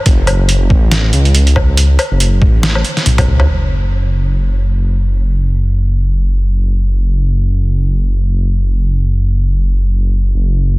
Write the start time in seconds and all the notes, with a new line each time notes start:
0.06 F#1, kick, closed hi-hat
0.27 closed hi-hat, low woodblock
0.49 closed hi-hat
0.70 A1, kick
0.92 snare, closed hi-hat
1.13 C#2, closed hi-hat
1.25 closed hi-hat
1.35 closed hi-hat
1.47 closed hi-hat
1.56 kick, low woodblock
1.77 closed hi-hat
1.99 closed hi-hat, low woodblock
2.11 F#1
2.20 closed hi-hat
2.42 A1, kick
2.63 snare, closed hi-hat
2.75 low woodblock
2.85 closed hi-hat
2.97 snare, closed hi-hat
3.06 B1, closed hi-hat, high tom
3.18 kick, closed hi-hat, high tom, low woodblock
3.27 C#2
3.40 mid tom, low woodblock
3.49 F#1
10.34 F#1